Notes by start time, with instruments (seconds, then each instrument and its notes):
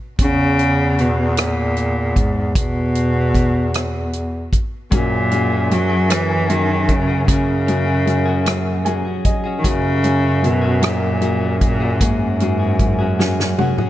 0.19 bass clarinet E2, cello C#3, kick, closed hi-hat
0.59 closed hi-hat
0.98 cello B2, closed hi-hat
1.37 cello A#2, cross-stick, closed hi-hat
1.77 closed hi-hat
2.16 cello G#2, kick, closed hi-hat
2.55 bass clarinet E2, cello B2, kick, closed hi-hat
2.95 closed hi-hat
3.35 kick, cross-stick, closed hi-hat
3.74 cross-stick, closed hi-hat
4.13 closed hi-hat
4.53 kick, closed hi-hat
4.91 bass clarinet F#2, cello A#2, clean electric guitar F#3 A#3 C#4 F#4 G#4, upright piano F#3, kick, closed hi-hat
5.30 upright piano F#3, clean electric guitar A#3 C#4 F#4 G#4, closed hi-hat
5.50 clean electric guitar C#4 F#4 G#4
5.70 upright piano F#3, cello F#3, cross-stick, closed hi-hat
5.90 clean electric guitar C#4 F#4 G#4
6.09 cello E3, clean electric guitar F#3 A#3 C#4 F#4 G#4, upright piano F#3, cross-stick, closed hi-hat
6.49 cello D#3, upright piano F#3, clean electric guitar A#3 C#4 F#4 G#4, closed hi-hat
6.68 clean electric guitar C#4 F#4 G#4
6.89 cello C#3, kick, closed hi-hat
7.08 clean electric guitar C#4 F#4 G#4
7.27 bass clarinet F#2, upright piano C#3, cello C#3, clean electric guitar F#3 A#3 C#4 F#4 G#4, kick, closed hi-hat
7.66 upright piano F#3, clean electric guitar A#3 C#4 F#4 G#4, closed hi-hat
7.86 clean electric guitar C#4 F#4 G#4
8.06 upright piano F#3, cross-stick, closed hi-hat
8.25 clean electric guitar C#4 F#4 G#4
8.46 clean electric guitar F#3 A#3 C#4 F#4 G#4, upright piano F#3, cross-stick, closed hi-hat
8.85 upright piano F#3 G#5, clean electric guitar A#3 C#4 F#4 G#4, closed hi-hat
9.05 clean electric guitar C#4 F#4 G#4
9.25 upright piano D#5, kick, closed hi-hat
9.44 clean electric guitar C#4 F#4 G#4
9.59 cello D#3
9.63 bass clarinet F#2, cello C#3, clean electric guitar F#3 A#3 C#4 F#4 G#4, upright piano F#3, kick, closed hi-hat
10.03 upright piano F#3, clean electric guitar A#3 C#4 F#4 G#4, closed hi-hat
10.22 clean electric guitar C#4 F#4 G#4
10.42 cello B2, upright piano F#3, closed hi-hat
10.62 clean electric guitar C#4 F#4 G#4
10.81 clean electric guitar F#3 A#3 C#4 F#4 G#4, upright piano F#3, cross-stick, closed hi-hat
10.86 cello A#2
11.21 upright piano F#3, clean electric guitar A#3 C#4 F#4 G#4, closed hi-hat
11.40 clean electric guitar C#4 F#4 G#4
11.61 cello A#2, kick, closed hi-hat
11.80 clean electric guitar C#4 F#4 G#4
12.00 bass clarinet F#2, cello G#2, clean electric guitar F#3 A#3 C#4 F#4 G#4, upright piano A#3, kick, closed hi-hat
12.39 upright piano F#3, clean electric guitar A#3 C#4 F#4 G#4, closed hi-hat
12.59 clean electric guitar C#4 F#4 G#4
12.79 upright piano F#3, kick, closed hi-hat
12.99 clean electric guitar C#4 F#4 G#4
13.19 upright piano F#3, clean electric guitar F#3 A#3 C#4 F#4 G#4, snare
13.40 snare
13.58 upright piano F#3 F#5, clean electric guitar A#3 C#4 F#4 G#4, high tom
13.78 clean electric guitar C#4 F#4 G#4, mid tom